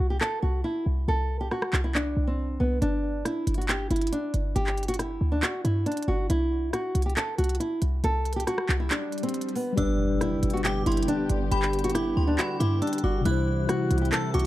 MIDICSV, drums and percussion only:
0, 0, Header, 1, 2, 480
1, 0, Start_track
1, 0, Key_signature, 1, "major"
1, 0, Tempo, 434783
1, 1192, Time_signature, 4, 2, 24, 8
1, 15969, End_track
2, 0, Start_track
2, 0, Title_t, "Drums"
2, 232, Note_on_c, 9, 39, 110
2, 342, Note_off_c, 9, 39, 0
2, 1672, Note_on_c, 9, 37, 71
2, 1782, Note_off_c, 9, 37, 0
2, 1791, Note_on_c, 9, 37, 95
2, 1901, Note_off_c, 9, 37, 0
2, 1912, Note_on_c, 9, 39, 102
2, 2022, Note_off_c, 9, 39, 0
2, 2151, Note_on_c, 9, 39, 111
2, 2262, Note_off_c, 9, 39, 0
2, 3113, Note_on_c, 9, 42, 76
2, 3223, Note_off_c, 9, 42, 0
2, 3592, Note_on_c, 9, 37, 74
2, 3595, Note_on_c, 9, 42, 87
2, 3702, Note_off_c, 9, 37, 0
2, 3706, Note_off_c, 9, 42, 0
2, 3832, Note_on_c, 9, 42, 69
2, 3912, Note_off_c, 9, 42, 0
2, 3912, Note_on_c, 9, 42, 52
2, 3992, Note_off_c, 9, 42, 0
2, 3992, Note_on_c, 9, 42, 40
2, 4071, Note_on_c, 9, 39, 114
2, 4075, Note_off_c, 9, 42, 0
2, 4075, Note_on_c, 9, 42, 96
2, 4182, Note_off_c, 9, 39, 0
2, 4185, Note_off_c, 9, 42, 0
2, 4312, Note_on_c, 9, 42, 66
2, 4372, Note_off_c, 9, 42, 0
2, 4372, Note_on_c, 9, 42, 67
2, 4432, Note_off_c, 9, 42, 0
2, 4432, Note_on_c, 9, 42, 65
2, 4493, Note_off_c, 9, 42, 0
2, 4493, Note_on_c, 9, 42, 68
2, 4556, Note_off_c, 9, 42, 0
2, 4556, Note_on_c, 9, 42, 80
2, 4666, Note_off_c, 9, 42, 0
2, 4789, Note_on_c, 9, 42, 80
2, 4900, Note_off_c, 9, 42, 0
2, 5033, Note_on_c, 9, 42, 73
2, 5143, Note_off_c, 9, 42, 0
2, 5152, Note_on_c, 9, 39, 69
2, 5262, Note_off_c, 9, 39, 0
2, 5272, Note_on_c, 9, 42, 47
2, 5332, Note_off_c, 9, 42, 0
2, 5332, Note_on_c, 9, 42, 60
2, 5392, Note_off_c, 9, 42, 0
2, 5392, Note_on_c, 9, 42, 70
2, 5452, Note_off_c, 9, 42, 0
2, 5452, Note_on_c, 9, 42, 80
2, 5512, Note_on_c, 9, 37, 71
2, 5515, Note_off_c, 9, 42, 0
2, 5515, Note_on_c, 9, 42, 88
2, 5622, Note_off_c, 9, 37, 0
2, 5626, Note_off_c, 9, 42, 0
2, 5992, Note_on_c, 9, 39, 111
2, 5995, Note_on_c, 9, 42, 97
2, 6102, Note_off_c, 9, 39, 0
2, 6105, Note_off_c, 9, 42, 0
2, 6235, Note_on_c, 9, 42, 80
2, 6346, Note_off_c, 9, 42, 0
2, 6473, Note_on_c, 9, 42, 50
2, 6532, Note_off_c, 9, 42, 0
2, 6532, Note_on_c, 9, 42, 60
2, 6592, Note_off_c, 9, 42, 0
2, 6592, Note_on_c, 9, 42, 68
2, 6652, Note_off_c, 9, 42, 0
2, 6652, Note_on_c, 9, 42, 80
2, 6762, Note_off_c, 9, 42, 0
2, 6953, Note_on_c, 9, 42, 77
2, 7064, Note_off_c, 9, 42, 0
2, 7432, Note_on_c, 9, 37, 74
2, 7436, Note_on_c, 9, 42, 89
2, 7543, Note_off_c, 9, 37, 0
2, 7546, Note_off_c, 9, 42, 0
2, 7673, Note_on_c, 9, 42, 68
2, 7753, Note_off_c, 9, 42, 0
2, 7753, Note_on_c, 9, 42, 54
2, 7833, Note_off_c, 9, 42, 0
2, 7833, Note_on_c, 9, 42, 40
2, 7912, Note_on_c, 9, 39, 108
2, 7916, Note_off_c, 9, 42, 0
2, 7916, Note_on_c, 9, 42, 96
2, 8023, Note_off_c, 9, 39, 0
2, 8026, Note_off_c, 9, 42, 0
2, 8153, Note_on_c, 9, 42, 67
2, 8213, Note_off_c, 9, 42, 0
2, 8213, Note_on_c, 9, 42, 65
2, 8273, Note_off_c, 9, 42, 0
2, 8273, Note_on_c, 9, 42, 66
2, 8333, Note_off_c, 9, 42, 0
2, 8333, Note_on_c, 9, 42, 67
2, 8396, Note_off_c, 9, 42, 0
2, 8396, Note_on_c, 9, 42, 81
2, 8507, Note_off_c, 9, 42, 0
2, 8630, Note_on_c, 9, 42, 82
2, 8741, Note_off_c, 9, 42, 0
2, 8873, Note_on_c, 9, 42, 76
2, 8984, Note_off_c, 9, 42, 0
2, 9113, Note_on_c, 9, 42, 50
2, 9193, Note_off_c, 9, 42, 0
2, 9193, Note_on_c, 9, 42, 64
2, 9273, Note_off_c, 9, 42, 0
2, 9273, Note_on_c, 9, 42, 79
2, 9353, Note_on_c, 9, 37, 71
2, 9356, Note_off_c, 9, 42, 0
2, 9356, Note_on_c, 9, 42, 88
2, 9463, Note_off_c, 9, 37, 0
2, 9466, Note_off_c, 9, 42, 0
2, 9472, Note_on_c, 9, 37, 97
2, 9583, Note_off_c, 9, 37, 0
2, 9593, Note_on_c, 9, 39, 101
2, 9704, Note_off_c, 9, 39, 0
2, 9832, Note_on_c, 9, 39, 111
2, 9836, Note_on_c, 9, 42, 95
2, 9943, Note_off_c, 9, 39, 0
2, 9946, Note_off_c, 9, 42, 0
2, 10073, Note_on_c, 9, 42, 47
2, 10133, Note_off_c, 9, 42, 0
2, 10133, Note_on_c, 9, 42, 59
2, 10193, Note_off_c, 9, 42, 0
2, 10193, Note_on_c, 9, 42, 71
2, 10253, Note_off_c, 9, 42, 0
2, 10253, Note_on_c, 9, 42, 78
2, 10313, Note_off_c, 9, 42, 0
2, 10313, Note_on_c, 9, 42, 81
2, 10393, Note_off_c, 9, 42, 0
2, 10393, Note_on_c, 9, 42, 66
2, 10472, Note_off_c, 9, 42, 0
2, 10472, Note_on_c, 9, 42, 47
2, 10549, Note_on_c, 9, 46, 83
2, 10583, Note_off_c, 9, 42, 0
2, 10660, Note_off_c, 9, 46, 0
2, 10793, Note_on_c, 9, 42, 75
2, 10903, Note_off_c, 9, 42, 0
2, 11272, Note_on_c, 9, 37, 74
2, 11275, Note_on_c, 9, 42, 93
2, 11382, Note_off_c, 9, 37, 0
2, 11386, Note_off_c, 9, 42, 0
2, 11513, Note_on_c, 9, 42, 68
2, 11593, Note_off_c, 9, 42, 0
2, 11593, Note_on_c, 9, 42, 53
2, 11673, Note_off_c, 9, 42, 0
2, 11673, Note_on_c, 9, 42, 41
2, 11752, Note_on_c, 9, 39, 113
2, 11755, Note_off_c, 9, 42, 0
2, 11755, Note_on_c, 9, 42, 99
2, 11862, Note_off_c, 9, 39, 0
2, 11866, Note_off_c, 9, 42, 0
2, 11993, Note_on_c, 9, 42, 67
2, 12053, Note_off_c, 9, 42, 0
2, 12053, Note_on_c, 9, 42, 67
2, 12113, Note_off_c, 9, 42, 0
2, 12113, Note_on_c, 9, 42, 68
2, 12172, Note_off_c, 9, 42, 0
2, 12172, Note_on_c, 9, 42, 66
2, 12236, Note_off_c, 9, 42, 0
2, 12236, Note_on_c, 9, 42, 86
2, 12346, Note_off_c, 9, 42, 0
2, 12470, Note_on_c, 9, 42, 87
2, 12580, Note_off_c, 9, 42, 0
2, 12713, Note_on_c, 9, 42, 79
2, 12824, Note_off_c, 9, 42, 0
2, 12833, Note_on_c, 9, 39, 73
2, 12943, Note_off_c, 9, 39, 0
2, 12953, Note_on_c, 9, 42, 50
2, 13013, Note_off_c, 9, 42, 0
2, 13013, Note_on_c, 9, 42, 61
2, 13073, Note_off_c, 9, 42, 0
2, 13073, Note_on_c, 9, 42, 70
2, 13133, Note_off_c, 9, 42, 0
2, 13133, Note_on_c, 9, 42, 81
2, 13193, Note_on_c, 9, 37, 73
2, 13196, Note_off_c, 9, 42, 0
2, 13196, Note_on_c, 9, 42, 92
2, 13303, Note_off_c, 9, 37, 0
2, 13306, Note_off_c, 9, 42, 0
2, 13673, Note_on_c, 9, 39, 111
2, 13676, Note_on_c, 9, 42, 98
2, 13783, Note_off_c, 9, 39, 0
2, 13786, Note_off_c, 9, 42, 0
2, 13916, Note_on_c, 9, 42, 82
2, 14027, Note_off_c, 9, 42, 0
2, 14153, Note_on_c, 9, 42, 51
2, 14212, Note_off_c, 9, 42, 0
2, 14212, Note_on_c, 9, 42, 64
2, 14272, Note_off_c, 9, 42, 0
2, 14272, Note_on_c, 9, 42, 70
2, 14332, Note_off_c, 9, 42, 0
2, 14332, Note_on_c, 9, 42, 80
2, 14443, Note_off_c, 9, 42, 0
2, 14633, Note_on_c, 9, 42, 77
2, 14744, Note_off_c, 9, 42, 0
2, 15112, Note_on_c, 9, 37, 76
2, 15116, Note_on_c, 9, 42, 92
2, 15223, Note_off_c, 9, 37, 0
2, 15226, Note_off_c, 9, 42, 0
2, 15353, Note_on_c, 9, 42, 69
2, 15432, Note_off_c, 9, 42, 0
2, 15432, Note_on_c, 9, 42, 54
2, 15512, Note_off_c, 9, 42, 0
2, 15512, Note_on_c, 9, 42, 41
2, 15592, Note_on_c, 9, 39, 116
2, 15595, Note_off_c, 9, 42, 0
2, 15595, Note_on_c, 9, 42, 97
2, 15702, Note_off_c, 9, 39, 0
2, 15705, Note_off_c, 9, 42, 0
2, 15832, Note_on_c, 9, 42, 69
2, 15892, Note_off_c, 9, 42, 0
2, 15892, Note_on_c, 9, 42, 69
2, 15969, Note_off_c, 9, 42, 0
2, 15969, End_track
0, 0, End_of_file